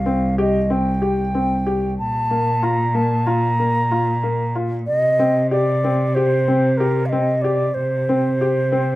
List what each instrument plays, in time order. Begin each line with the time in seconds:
Already playing: cello C2, flute F5
0.06 felt piano C4
0.38 felt piano G4, flute D#5
0.70 felt piano C4, flute G5
1.02 felt piano G4
1.35 felt piano C4
1.66 felt piano G4
1.99 cello A#2, flute A5
2.31 felt piano A#3
2.63 felt piano F4, flute A#5
2.94 felt piano A#3, flute A5
3.27 felt piano F4, flute A#5
3.59 felt piano A#3
3.91 felt piano F4
4.23 felt piano A#3
4.55 felt piano F4
4.87 cello C3, flute D#5
5.19 felt piano C4
5.51 felt piano G4, flute D5
5.84 felt piano C4
6.15 felt piano G4, flute C5
6.48 felt piano C4
6.77 felt piano G4, flute A#4
7.06 flute D#5 F5
7.12 felt piano C4
7.42 felt piano G4, flute D5
7.74 cello C3, flute C5
8.09 felt piano C4
8.41 felt piano G4
8.72 felt piano C4